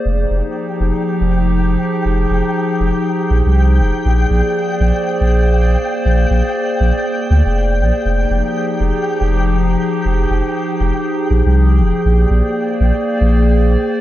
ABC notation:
X:1
M:4/4
L:1/16
Q:"Swing 16ths" 1/4=120
K:Fdor
V:1 name="Synth texture"
g16- | g16- | g16- | g16- |
g16- | g16- | g16 |]
V:2 name="Ambient pad"
[F,EGA]16- | [F,EGA]16 | [B,cd]16- | [B,cd]16 |
[F,EGA]16- | [F,EGA]16 | [B,cd]16 |]
V:3 name="Sub bass" clef=bass
F,,, z F,,, z3 F,,, z2 F,,,4- F,,, z2 | F,,, z F,,, z3 F,,, z3 B,,, C,,3 F,,, z | B,,, z B,,, z3 B,,, z2 B,,,4- B,,, z2 | B,,, z B,,, z3 B,,, z3 D,, F,,,3 B,,, z |
F,,, z F,,, z3 F,,, z2 F,,,4- F,,, z2 | F,,, z F,,, z3 F,,, z3 B,,, C,,3 F,,, z | B,,, z B,,, z3 B,,, z2 B,,,4- B,,, z2 |]